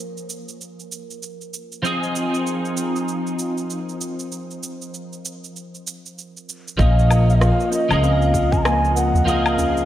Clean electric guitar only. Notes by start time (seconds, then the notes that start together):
Already playing: F3 A#3 C#4 G#4
1.82 F3 C4 D#4 G#4
6.77 F3 A#3 C#4
6.82 G#4
7.89 F3 A#3
7.93 G#4
9.25 F3 A#3 G#4